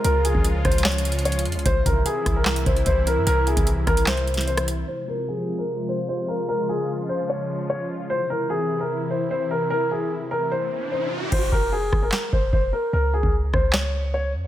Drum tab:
CC |------------------------------------------------|------------------------------------------------|------------------------------------------------|------------------------------------------------|
HH |x-----x-----x-----x-x-x-x-x-x-x-x-x-x-x-x-x-x-x-|x-----x-----x-----x-----x--x--x--x--x-----x-----|x-----x--x--x-----x--x--x--x--x-x-x-x--x--x-----|------------------------------------------------|
CP |------------------------x-----------------------|------------------------x-----------------------|------------------------x-----------------------|------------------------------------------------|
SD |------------------r-----o-----------------------|------------------r-----o-----------------------|------------------r-----o--------o-----r--------|------------------------------------------------|
BD |---------o--------o-----------------------------|o-----o-----------o-----------o-----o-----------|---------o--------o-----------------------------|------------------------------------------------|

CC |------------------------------------------------|------------------------------------------------|------------------------------------------------|x-----------------------------------------------|
HH |------------------------------------------------|------------------------------------------------|------------------------------------------------|------------------------------------------------|
CP |------------------------------------------------|------------------------------------------------|------------------------------------------------|------------------------x-----------------------|
SD |------------------------------------------------|------------------------------------------------|------------------------------------------------|------------------r-----o-----------------------|
BD |------------------------------------------------|------------------------------------------------|------------------------------------------------|o-----o-----------o-----------o-----o-----------|

CC |------------------------------------------------|
HH |------------------------------------------------|
CP |------------------------x-----------------------|
SD |------------------r-----o-----------------------|
BD |---------o--------o-----------------------------|